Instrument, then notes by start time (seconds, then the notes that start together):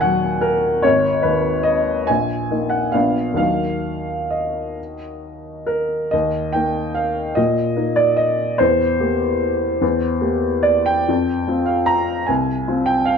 upright piano
Already playing: D#2 A#2 G#5
0.01 F#3 F#5
0.41 A#4
0.82 G#1 C#5
1.22 D#2 B4
1.63 D#5
2.07 A#1 G#5
2.51 A#3 D#4
2.70 F#5
2.92 A#1 B3 D4 F5
3.34 D#2 F#3 A#3 D#4 F5
4.30 D#5
5.67 A#4
6.11 D#2 D#5
6.53 A#3 D#4 G5
6.95 F5
7.35 A#2 D#5
7.76 A#3 D#4
7.96 D5
8.17 D#5
8.58 E2 C5
9.00 A#3 G4
9.81 E2
10.21 A#3 G4
10.63 D5
10.86 G5
11.08 F2
11.47 C4 F4
11.66 F5
11.86 A#5
12.26 C2 G#5
12.68 C4 F4
12.86 G5
13.05 F5